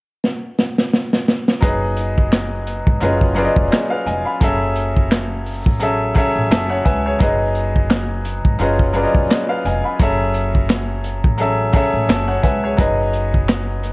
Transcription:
0.24 snare
0.59 snare
0.78 snare
0.93 snare
1.13 snare
1.28 snare
1.48 snare
1.60 upright bass F#1, upright piano F#3 D#4 G#4 B4 D#5, kick, closed hi-hat
1.97 closed hi-hat
2.18 kick
2.32 snare, clap, closed hi-hat
2.67 closed hi-hat
2.87 upright bass G#1, kick
3.00 upright bass F#1, upright piano F#3 C#4 F4 G#4 B4 D#5, closed hi-hat
3.21 kick
3.35 upright piano F#3 C#4 F4 G#4 B4 D5, closed hi-hat
3.45 upright piano D#5
3.56 upright bass F1, kick
3.71 upright piano G#4 D#5, snare, clap, closed hi-hat
3.90 upright piano B4 F5
4.06 upright bass F1, upright piano D#5 G#5, closed hi-hat
4.25 upright piano F5 B5
4.41 upright bass F#1, upright piano F#3 C#4 G#4 A4 E5, kick, closed hi-hat
4.76 closed hi-hat
4.97 kick
5.11 snare, clap, closed hi-hat
5.46 open hi-hat
5.66 upright bass A1, kick
5.79 upright piano F#3 C#4 G#4 A4 E5, closed hi-hat
6.14 upright piano F#3 C#4 G#4 A4 C#5 E5, kick, closed hi-hat
6.35 upright bass A1
6.50 upright bass F#1, upright piano E5 A5, snare, clap, closed hi-hat
6.69 upright piano C#5 F#5
6.85 upright bass C#2, upright piano B4 E5 G#5, kick, closed hi-hat
7.06 upright piano G#4 C#5
7.19 upright bass F#1, upright piano F#3 D#4 G#4 B4 D#5, kick, closed hi-hat
7.55 closed hi-hat
7.76 kick
7.90 snare, clap, closed hi-hat
8.25 closed hi-hat
8.45 upright bass G#1, kick
8.59 upright bass F#1, upright piano F#3 C#4 F4 G#4 B4 D#5, closed hi-hat
8.80 kick
8.93 upright piano F#3 C#4 F4 G#4 B4 D5, closed hi-hat
9.03 upright piano D#5
9.15 upright bass F1, kick
9.29 upright piano G#4 D#5, snare, clap, closed hi-hat
9.49 upright piano B4 F5
9.65 upright bass F1, upright piano D#5 G#5, closed hi-hat
9.84 upright piano F5 B5
9.99 upright bass F#1, upright piano F#3 C#4 G#4 A4 E5, kick, closed hi-hat
10.34 closed hi-hat
10.55 kick
10.69 snare, clap, closed hi-hat
11.04 closed hi-hat
11.24 upright bass A1, kick
11.38 upright piano F#3 C#4 G#4 A4 E5, closed hi-hat
11.72 upright piano F#3 C#4 G#4 A4 C#5 E5, kick, closed hi-hat
11.94 upright bass A1
12.09 upright bass F#1, upright piano E5 A5, snare, clap, closed hi-hat
12.28 upright piano C#5 F#5
12.43 upright bass C#2, upright piano B4 E5 G#5, kick, closed hi-hat
12.64 upright piano G#4 C#5
12.77 upright bass F#1, upright piano F#3 D#4 G#4 B4 D#5, kick, closed hi-hat
13.13 closed hi-hat
13.34 kick
13.48 snare, clap, closed hi-hat
13.83 closed hi-hat

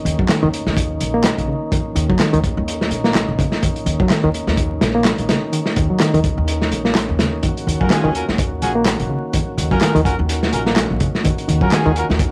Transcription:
Already playing: tonewheel organ D#3 A#3 C#4 D#4
0.05 upright bass D#2, reed electric piano D#3, closed hi-hat
0.19 reed electric piano F#3, kick
0.29 reed electric piano D#3, snare, clap, closed hi-hat
0.43 upright bass D#2, reed electric piano D#3
0.53 closed hi-hat
0.66 upright bass D#2, snare
0.77 kick, closed hi-hat
1.00 upright bass A#1, closed hi-hat
1.14 reed electric piano A#3
1.24 snare, clap, closed hi-hat
1.38 upright bass A#1, closed hi-hat
1.48 reed electric piano C#3
1.72 reed electric piano D#3, kick, closed hi-hat
1.95 upright bass D#2, reed electric piano D#3, closed hi-hat
2.09 reed electric piano F#3, kick
2.19 reed electric piano D#3, snare, clap, closed hi-hat
2.33 upright bass D#2, reed electric piano D#3, closed hi-hat
2.44 kick, closed hi-hat
2.57 upright bass D#2
2.68 closed hi-hat
2.81 snare
2.91 upright bass A#1, closed hi-hat
3.04 reed electric piano A#3, snare
3.15 snare, clap, closed hi-hat
3.28 upright bass A#1
3.38 reed electric piano C#3, kick, closed hi-hat
3.52 snare
3.62 reed electric piano D#3, kick, closed hi-hat
3.76 closed hi-hat
3.86 upright bass D#2, reed electric piano D#3, closed hi-hat
4.00 reed electric piano F#3, kick
4.10 reed electric piano D#3, snare, clap, closed hi-hat
4.23 upright bass D#2, reed electric piano D#3
4.34 closed hi-hat
4.47 upright bass D#2, snare
4.57 kick, closed hi-hat
4.81 upright bass A#1, snare, closed hi-hat
4.95 reed electric piano A#3
5.05 snare, clap, closed hi-hat
5.18 upright bass A#1, closed hi-hat
5.29 reed electric piano C#3, snare, closed hi-hat
5.53 reed electric piano D#3, closed hi-hat
5.66 snare
5.76 upright bass D#2, reed electric piano D#3, kick, closed hi-hat
5.90 reed electric piano F#3
6.00 reed electric piano D#3, snare, clap, closed hi-hat
6.14 upright bass D#2, reed electric piano D#3, closed hi-hat
6.24 kick, closed hi-hat
6.37 upright bass D#2
6.48 closed hi-hat
6.62 snare
6.71 upright bass A#1, closed hi-hat
6.85 reed electric piano A#3, snare
6.95 snare, clap, closed hi-hat
7.09 upright bass D#2
7.19 reed electric piano C#3, snare, closed hi-hat
7.43 reed electric piano D#3, tonewheel organ F#4, kick, closed hi-hat
7.57 closed hi-hat
7.67 upright bass D#2, reed electric piano D#3, closed hi-hat
7.81 reed electric piano F#3, horn section C#4 F4 F#4 A#4, kick
7.90 reed electric piano D#3, horn section C#4 F4 F#4 G#4, snare, clap, closed hi-hat
8.04 upright bass D#2, reed electric piano D#3
8.15 horn section C#4 F4 F#4 A#4, closed hi-hat
8.29 upright bass D#2, snare
8.38 kick, closed hi-hat
8.62 upright bass A#1, horn section C#4 F4 F#4 G#4, closed hi-hat
8.76 reed electric piano A#3
8.85 snare, clap, closed hi-hat
8.99 upright bass A#1, closed hi-hat
9.10 reed electric piano C#3
9.33 reed electric piano D#3, kick, closed hi-hat
9.57 upright bass D#2, reed electric piano D#3, closed hi-hat
9.71 reed electric piano F#3, horn section C#4 F4 F#4 A#4, kick
9.81 reed electric piano D#3, horn section C#4 F4 F#4 A#4, snare, clap, closed hi-hat
9.95 upright bass D#2, reed electric piano D#3, closed hi-hat
10.05 horn section C#4 F4 F#4 A#4, kick, closed hi-hat
10.19 upright bass D#2
10.29 closed hi-hat
10.43 snare
10.53 upright bass A#1, horn section C#4 F4 F#4 A#4, closed hi-hat
10.66 reed electric piano A#3, snare
10.76 snare, clap, closed hi-hat
10.90 upright bass A#1
11.00 reed electric piano C#3, kick, closed hi-hat
11.15 snare
11.24 reed electric piano D#3, kick, closed hi-hat
11.38 closed hi-hat
11.48 upright bass D#2, reed electric piano D#3, closed hi-hat
11.61 reed electric piano F#3, horn section C#4 F4 F#4 A#4, kick
11.72 reed electric piano D#3, horn section C#4 F4 F#4 G#4, snare, clap, closed hi-hat
11.85 upright bass D#2, reed electric piano D#3
11.96 horn section C#4 F4 F#4 A#4, closed hi-hat
12.10 upright bass D#2, snare
12.19 kick, closed hi-hat

